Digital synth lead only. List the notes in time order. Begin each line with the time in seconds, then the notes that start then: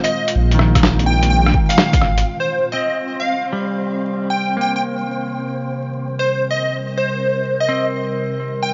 0.04 D#5
1.06 G5
1.30 G5
1.69 F5
2.40 C5
2.72 D#5
3.20 F5
4.30 G5
4.61 G5
4.76 G5
6.19 C5
6.51 D#5
6.98 C5
7.60 D#5
8.63 G5